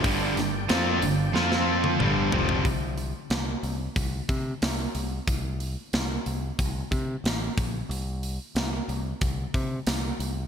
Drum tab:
HH |o-o-o-o---------|o-o-o-o-o-o-o-o-|o-o-o-o-o-o-o-o-|o-o-o-o-o-o-o-o-|
SD |--o-o---oo------|----o-------o---|----o-------o---|----o-------o---|
T1 |-----------o----|----------------|----------------|----------------|
T2 |------------o---|----------------|----------------|----------------|
FT |--------------oo|----------------|----------------|----------------|
BD |o---------------|o-------o-o-----|o-------o-o---o-|--------o-o-----|